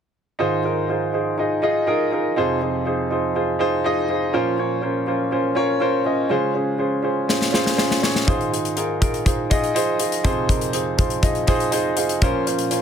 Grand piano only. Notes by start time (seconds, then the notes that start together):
0.39 G#2 D#3 D#4 F4 G#4 C5
0.63 D#4 F4 G#4 A#4
0.88 D#4 F4 G#4 C5
1.13 D#4 F4 G#4 C5
1.38 D#4 F4 G#4 D#5
1.62 D#4 F4 G#4 D#5
1.87 D#4 F4 G#4 A#4
2.11 D#4 F4 G#4 A#4
2.36 F2 C3 D#4 F4 G#4 C5
2.61 D#4 G#4 C5
2.85 D#4 F4 G#4 C5
3.10 D#4 F4 G#4 C5
3.35 D#4 F4 G#4 C5
3.59 D#4 F4 G#4 C5
3.84 D#4 F4 G#4 D#5
4.09 D#4 F4 G#4 C5
4.33 A#2 F3 C#4 F4 A#4 C5
4.58 C#4 F4 A#4 C#5
4.81 C#4 F4 A#4 C5
5.06 C#4 F4 A#4 C5
5.31 C#4 F4 A#4 C5
5.55 C#4 F4 A#4 C#5
5.80 C#4 F4 A#4 C5
6.05 C#4 F4 A#4 D#5
6.29 C#3 G#3 C#4 F4 G#4 C5
6.54 C#4 F4 G#4 C5
6.78 C#4 F4 G#4 C5
7.03 C#4 F4 G#4 C5
7.28 C#4 F4 G#4 C5
7.52 C#4 F4 G#4 C5
7.77 C#4 F4 G#4 C5
8.02 C#4 F4 G#4 C#5
8.27 G#2 D#3 D#4 F4 G#4 C5
8.51 D#4 F4 G#4 C5
8.76 D#4 F4 G#4 A#4
9.00 D#4 F4 G#4 A#4
9.25 D#4 F4 G#4 C5
9.50 D#4 F4 G#4 D#5
9.75 D#4 F4 G#4 C5
9.99 D#4 F4 G#4 C5
10.24 F2 C3 D#4 F4 G#4 C5
10.48 D#4 F4 G#4 A#4
10.73 D#4 F4 G#4 C5
10.97 D#4 F4 G#4 C5
11.22 D#4 F4 G#4 D#5
11.47 D#4 F4 G#4 C5
11.71 D#4 F4 G#4 C5 G#5
11.97 D#4 F4 G#4 C5 F5
12.22 A#2 F3 C#4 F4 A#4 C5
12.47 C#4 F4 A#4 C5
12.71 C#4 F4 A#4 C5